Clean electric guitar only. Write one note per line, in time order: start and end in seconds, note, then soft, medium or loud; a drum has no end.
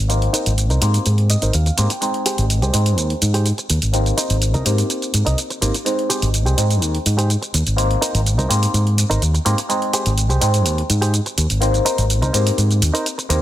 0.33 0.52 D#4 loud
0.33 0.52 A#4 medium
0.33 0.52 C5 loud
0.70 0.82 D#4 medium
0.70 0.82 A#4 medium
0.70 0.82 C5 medium
0.94 muted clean electric guitar stroke soft
1.06 muted clean electric guitar stroke soft
1.30 1.52 D#5 medium
1.42 1.54 D#4 loud
1.42 1.54 A#4 medium
1.42 1.54 C5 loud
1.54 1.76 F5 medium
1.66 muted clean electric guitar stroke medium
1.78 2.01 G5 medium
1.78 muted clean electric guitar stroke soft
2.26 2.44 G4 loud
2.26 2.44 G#4 loud
2.26 2.44 C5 loud
2.62 2.74 G4 medium
2.62 2.74 G#4 medium
2.62 2.74 C5 medium
2.86 muted clean electric guitar stroke soft
2.98 muted clean electric guitar stroke soft
3.34 3.46 G4 loud
3.34 3.46 G#4 medium
3.34 3.46 C5 loud
3.58 muted clean electric guitar stroke medium
3.69 muted clean electric guitar stroke soft
4.17 4.36 D#4 loud
4.17 4.36 A#4 medium
4.17 4.36 C5 loud
4.54 4.66 D#4 medium
4.54 4.66 A#4 medium
4.54 4.66 D#5 medium
4.78 muted clean electric guitar stroke soft
4.90 muted clean electric guitar stroke soft
5.26 5.38 D#4 loud
5.26 5.38 A#4 medium
5.26 5.38 D#5 loud
5.50 muted clean electric guitar stroke medium
5.61 muted clean electric guitar stroke soft
6.10 6.28 G4 loud
6.10 6.28 G#4 medium
6.10 6.28 C5 loud
6.46 6.58 G4 medium
6.46 6.58 G#4 medium
6.46 6.58 C5 medium
6.70 muted clean electric guitar stroke soft
6.82 muted clean electric guitar stroke soft
7.18 7.30 G4 loud
7.18 7.30 G#4 medium
7.18 7.30 C5 loud
7.42 muted clean electric guitar stroke medium
7.54 muted clean electric guitar stroke soft
8.01 8.20 D#4 loud
8.01 8.20 A#4 medium
8.01 8.20 C5 loud
8.38 8.50 D#4 medium
8.38 8.50 A#4 medium
8.38 8.50 C5 medium
8.62 muted clean electric guitar stroke soft
8.74 muted clean electric guitar stroke soft
9.10 9.22 D#4 loud
9.10 9.22 A#4 loud
9.10 9.22 C5 loud
9.34 muted clean electric guitar stroke medium
9.46 muted clean electric guitar stroke soft
9.94 10.12 G4 loud
9.94 10.12 G#4 loud
9.94 10.12 C5 loud
10.29 10.42 G4 medium
10.29 10.42 G#4 medium
10.29 10.42 C5 medium
10.54 muted clean electric guitar stroke soft
10.65 muted clean electric guitar stroke soft
11.01 11.13 G4 loud
11.01 11.14 G#4 medium
11.01 11.14 C5 loud
11.26 muted clean electric guitar stroke medium
11.38 muted clean electric guitar stroke soft
11.85 12.04 D#4 loud
11.85 12.04 A#4 medium
11.85 12.04 C5 loud
12.22 12.34 D#4 medium
12.22 12.34 A#4 medium
12.22 12.34 C5 medium
12.46 muted clean electric guitar stroke soft
12.58 muted clean electric guitar stroke soft
12.93 13.05 D#4 loud
12.93 13.06 A#4 medium
12.93 13.06 C5 medium
13.18 muted clean electric guitar stroke medium
13.30 muted clean electric guitar stroke soft